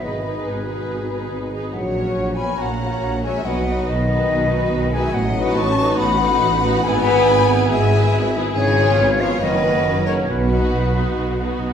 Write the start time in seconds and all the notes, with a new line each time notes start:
0.01 G#1 G#2 D#3 D#4 G#4 B4 D#5
0.23 D#4 G#4 B4
0.45 G#1 G#2 B2 G#4 B4
0.66 D#4 G#4 B4
0.88 G#1 G#2
1.09 D#4 G#4 B4
1.31 G#1 G#2
1.52 D#4 G#4 B4
1.72 A#1 A#2 F#3 C#5 F#5
1.94 C#4 F#4 C#5
2.16 A#1 A#2
2.36 B3 C#4 F#4 C#5 G#5 B5
2.58 A#1 A#2 F#5 A#5
2.62 A#3
2.81 C#4 F#4 C#5
3.02 A#1 A#2
3.23 G#3 C#4 F#4 C#5 E5 G#5
3.45 B1 B2 F#3 D#4 F#4 B4 D#5 F#5
3.67 D#4 F#4 B4
3.86 B1 B2 D#3 B4 D#5
4.08 D#4 F#4 B4
4.30 B1 B2
4.51 D#4 F#4 B4
4.72 B1 B2
4.93 G#3 D#4 F#4 B4 E5 G#5
5.14 A1 A2 F#3 D#5 F#5
5.35 D#4 F#4 B4
5.55 A1 A2 C#4 A5 C#6
5.78 D#4 F#4 B4
5.98 A1 A2 B3 F#5 B5
6.20 D#4 F#4 B4
6.42 A1 A2
6.63 D#4 F#4 B4
6.83 G#1 G#2 B3 E4 G#4 G#5 B5
7.06 B3 E4 G#4
7.27 G#1 G#2
7.49 B3 E4 G#4
7.70 G#1 G#2 G#3 E5 G#5
7.92 B3 E4 G#4
8.13 G#1 G#2
8.35 B3 E4 G#4
8.54 G#1 G#2 C#3 G#4 C#5
8.77 B3 C#4 F4
8.99 G#1 G#2
9.19 F3 B3 C#4 F4 C#5 F5
9.40 F#1 F#2 D#3 A#3 C#4 F#4 B4 D#5
9.63 A#3 C#4 F#4
9.84 F#1 F#2
10.05 C#3 A#3 C#4 F#4 A#4 C#5
10.28 B1 B2 F#4 B4
10.51 B3 D#4 F#4
10.73 B1 B2
10.96 B3 D#4 F#4
11.18 B1 B2
11.40 B3 D#4 F#4
11.62 B1 B2